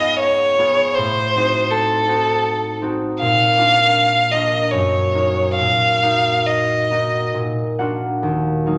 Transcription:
Already playing: G#2 B3 F4 G#4 D#5
0.19 C#5
0.58 B3 F4 G#4
0.95 A2 C5
1.36 C4 D#4 F#4
1.70 A4
2.08 C4 D#4 F#4
2.82 C4 D#4 F#4
3.20 A#2 F5
3.57 A#3 D4 F4
4.32 A#3 D4 F4 D#5
4.71 F#2 C#5
5.14 A#3 D#4 F#4
5.55 A#2 F5
6.02 A#3 D#4 F#4
6.46 D#5
6.91 A#3 D#4 F#4
7.34 A#2
7.79 A#3 D4 F4 F#4 F#5
8.23 D#2
8.66 F#3 A#3 D#4

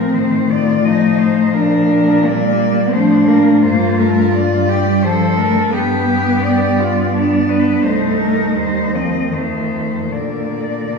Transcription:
Already playing: A2 F3 C4 A#4
0.12 D#3 C5
0.48 D#3 F4 D5
0.83 F3 D#4 D#5
1.18 C5
1.53 A#2 F3 D4 A#4
2.24 G3 A#3 D5
2.93 A2 F3 D4 C5
3.26 A#3 A#4
3.63 G2 A#3 F4 C5
3.98 A3 A#4
4.33 G3 D5
4.69 G4
5.03 F3 A4 C5
5.37 A3 A#4
5.72 G2 B3 G4 B4
6.43 D5
6.79 F4
7.13 B3 D4 D5
7.49 B4
7.83 C2 A3 D#4 C5
8.20 A#4
8.55 D#2 G3 C5
8.92 F3 C4 D#5
9.29 F2 D#3 A3 C5
10.09 A#2 D3 A#3 D5
10.91 D3

